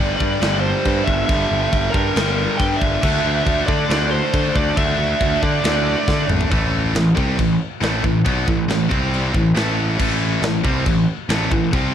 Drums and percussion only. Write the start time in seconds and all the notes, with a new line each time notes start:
0.20 kick
0.42 snare, china
0.85 kick, china
1.08 kick
1.29 kick, china
1.73 kick, china
1.94 kick
2.16 snare, china
2.60 kick, china
2.81 kick
3.03 kick, crash, china
3.47 kick, china
3.68 kick
3.90 snare, china
4.34 kick, china
4.56 kick
4.77 kick, china
5.21 kick, china
5.43 kick
5.64 snare, china
6.08 kick, snare
6.30 mid tom
6.41 floor tom
6.52 kick, china
6.95 snare, china
7.17 kick
7.39 kick, china
7.83 snare, china
8.04 kick
8.26 kick, china
8.48 kick
8.70 snare, china
8.91 kick
9.14 china
9.34 kick
9.56 snare, china
9.99 kick, china, crash
10.43 snare, china
10.65 kick
10.86 kick, china
11.29 snare, china
11.51 kick
11.73 kick, china